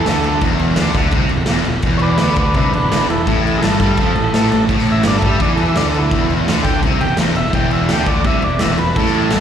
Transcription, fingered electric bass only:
0.07 D2
0.42 E1
0.76 D2
0.94 D2
1.12 C2
1.30 E1
1.49 E1
1.66 E1
1.83 E1
2.19 D2
2.37 D2
2.55 C2
2.71 E1
2.90 E1
3.08 E1
3.27 A1
3.63 G1
3.81 G2
3.98 F2
4.17 A1
4.34 A1
4.52 A1
4.69 A1
5.04 G1
5.22 G2
5.41 E2
5.76 D2
6.12 E1
6.45 D2
6.64 D2
6.82 C2
6.99 E1
7.17 E1
7.35 E1
7.53 E1
7.89 D2
8.06 D2
8.25 C2
8.43 E1
8.61 E1
8.79 E1
8.97 A1
9.33 G1

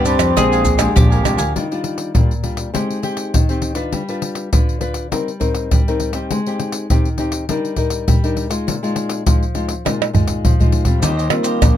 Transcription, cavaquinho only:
0.05 D4 G4 B4 D5
0.36 D4 A#4 F5 G#5
0.52 A#4 F5 G#5
0.65 muted cavaquinho stroke
0.78 A#4 F5 G#5
1.10 A#4 F5 G#5
1.23 D4 A#4 F5 G#5
1.37 A#4 F5 G#5
11.02 D#4 G4 C5 D#5
11.17 G4 C5 D#5
11.30 muted cavaquinho stroke
11.43 G4 C5 D#5

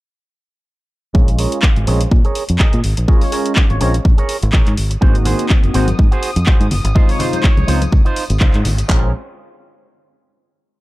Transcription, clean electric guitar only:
1.14 G#4 A#4 C#5
1.39 G#4 A#4 C#5
1.76 muted clean electric guitar stroke
1.87 G#4 A#4 C#5
2.11 muted clean electric guitar stroke
2.25 G#4 A#4 C#5
2.59 G#4 A#4 D#5
2.97 muted clean electric guitar stroke
3.08 G#4 A#4 C#5
3.32 G#4 A#4 C#5
3.70 muted clean electric guitar stroke
3.81 G#4 A#4 C#5
4.05 muted clean electric guitar stroke
4.18 G#4 A#4 C#5
4.53 G#4 A#4 C#5
4.90 muted clean electric guitar stroke
5.01 F#4 G#4 C5
5.25 F#4 G#4 C5
5.63 muted clean electric guitar stroke
5.74 F#4 G#4 C5
5.99 muted clean electric guitar stroke
6.11 F#4 G#4 C5
6.47 F#4 G#4 C5
6.84 muted clean electric guitar stroke
6.95 D#4 F4 C5
7.19 D#4 F4 C5
7.57 muted clean electric guitar stroke
7.67 D#4 F4 C5
7.92 muted clean electric guitar stroke
8.05 D#4 F4 C5
8.40 D#4 F4 C5
8.78 muted clean electric guitar stroke
8.88 C#4 G#4 A#4

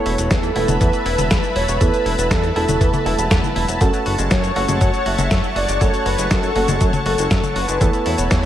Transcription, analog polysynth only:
Already playing: C#5
0.31 A4
0.81 B4
1.56 C#5
1.81 B4
2.31 A4
4.31 C#5
4.81 C#5
5.06 E5
5.57 D5
5.82 C#5
6.07 B4
6.31 A4
6.81 C#5
7.07 A4
7.56 B4
8.06 C#5

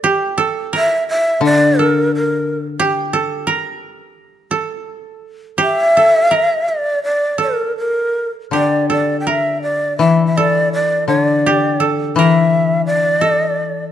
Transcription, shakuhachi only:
0.77 E5
1.09 E5
1.45 D5
1.79 A#4
2.15 A#4
5.62 E5
6.69 D5
7.04 D5
7.42 A#4
7.78 A#4
8.53 D5
8.90 D5
9.20 G5
9.28 E5
9.63 D5
9.99 E5
10.26 E5
10.37 D5
10.73 D5
11.08 C#5
11.21 D5
12.16 E5
12.86 D5

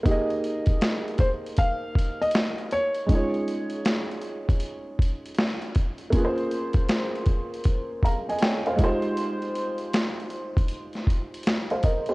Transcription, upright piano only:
0.03 A#3 D#4 G4
0.09 G#4 D#5
3.07 G#3 C#4 D#4
3.12 F4 G#4 C#5
6.10 A#3 C#4
6.14 F4 G#4 B4
6.25 C5
8.04 F5 A#5
8.29 D#5 G#5
8.42 C#5 G5
8.67 C5 F5
8.76 G#3 D#4 F4
8.82 G4 C5
11.71 C5 F5
11.84 A#4 D#5
12.09 G4 C5

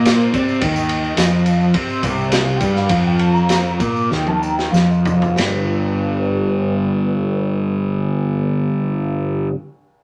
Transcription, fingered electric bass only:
Already playing: A#2
0.34 C3
0.62 D#2
1.18 F2
1.75 C3
2.03 C2
2.61 G2
2.90 F2
3.80 A#2
4.12 D#2
4.73 F2
5.38 G1

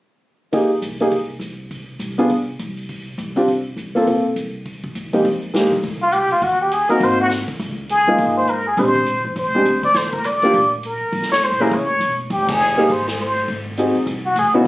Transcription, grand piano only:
0.52 A#3 D#4 G4 G#4
1.01 A#3 D#4 G4 G#4
2.18 B3 D4 F4 G#4
3.36 C4 D4 F4 G4
3.95 A#3 C4 F4 A4
4.07 A#3 C4 F4 A4
5.13 F2 G#3 A#3 D#4 G4
5.54 G#3 A#3 D#4 G4
6.89 A#3 C4 D#4 F#4
8.07 G#3 A#3 D#4 F4
8.78 G#3 C4 D4 G4
9.55 G#3 C4 D4 G4
10.43 A#3 D4 F4 G4
11.60 A#3 C#4 E4 G#4
12.78 A#3 D#4 G4 G#4
13.78 C4 D#4 F#4 G#4
14.54 C#3 B3 D#4 E4 F#4

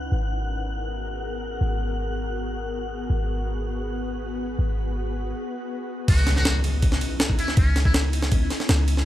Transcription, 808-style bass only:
Already playing: C#2
0.12 G#1
1.61 G#1
3.10 G#1
4.59 G#1
6.08 C#2
7.01 B1
7.20 C#2
7.57 C#2
8.69 C#2

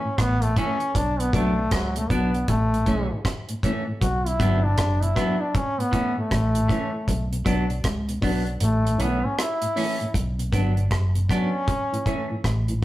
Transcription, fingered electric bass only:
0.19 A1
0.95 B1
1.34 B1
1.72 C#2
2.11 B1
2.49 A1
2.86 B1
4.02 B1
4.40 G1
4.78 F#1
6.31 A1
7.08 B1
7.46 B1
7.85 C#2
8.22 B1
8.61 A1
8.99 B1
10.15 B1
10.53 G1
10.91 F#1
12.45 A1

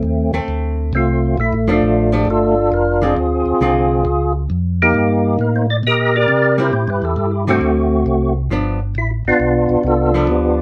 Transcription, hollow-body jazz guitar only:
0.34 A3 C4
1.68 F3 A3 D4
2.12 F3 A3 D4
3.02 D3 G#3 C4 F4
3.61 D3 G#3 C4 F4
6.58 G3 C4 E4
7.47 D3 A3 C4 F#4
8.51 F3 B3 D4
10.14 F3 B3 D4

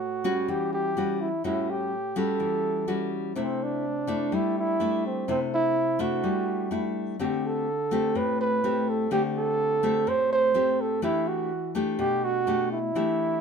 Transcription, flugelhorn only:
Already playing: F#4
0.50 G4
0.73 G4
1.21 E4
1.46 E4
1.70 G4
2.18 A4
3.40 C4
3.63 D4
4.34 E4
4.59 E4
5.06 C4
5.30 C4
5.54 E4
6.01 F#4
7.23 G4
7.46 A4
8.17 B4
8.41 B4
8.89 A4
9.13 G4
9.37 A4
10.09 C5
10.32 C5
10.81 A4
11.03 E4
11.28 F#4
11.99 G4
12.24 F#4
12.72 E4

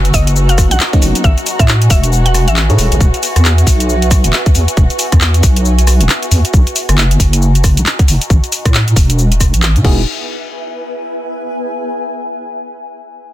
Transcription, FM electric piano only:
0.93 F#3 A#3 B3 C#4 D#4
2.70 E4 G#4 A4 B4 C#5
9.84 B3 D#4 E4 F#4 G#4

